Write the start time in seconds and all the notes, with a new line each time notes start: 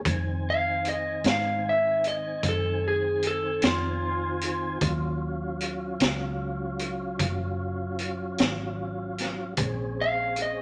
0.05 F2 D#3 C4 G#5, kick, closed hi-hat
0.50 F5
0.85 closed hi-hat
0.89 D#5
1.24 G#2, snare, closed hi-hat
1.29 F5
1.69 E5
2.04 D#5, closed hi-hat
2.43 F#2, kick, closed hi-hat
2.49 A4
2.88 G#4
3.23 closed hi-hat
3.27 A4
3.62 F2, snare, closed hi-hat
3.67 F4
4.41 closed hi-hat
4.81 D#2 F#3 C#4 F4, kick, closed hi-hat
5.61 closed hi-hat
6.00 C#2, snare, closed hi-hat
6.79 closed hi-hat
7.19 F#1, kick, closed hi-hat
7.99 closed hi-hat
8.38 G#1, snare, closed hi-hat
9.18 snare, closed hi-hat
9.57 A#1 C4 C#4 G#4, kick, closed hi-hat
10.01 F5
10.36 closed hi-hat
10.42 D#5